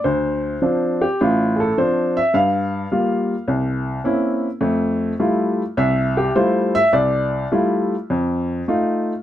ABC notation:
X:1
M:4/4
L:1/8
Q:"Swing" 1/4=104
K:F
V:1 name="Upright piano"
c3 G F [_A=A] c e | f4 z4 | z4 e G c e | d2 z6 |]
V:2 name="Upright piano"
D,,2 [F,CD] z [A,,,A,,]2 [F,CD] z | G,,2 [G,B,F] z C,,2 [B,C_DE] z | [F,,A,]2 [G,A,EF] z C,,2 [G,A,EF] z | C,,2 [G,A,EF] z F,,2 [A,_EF] z |]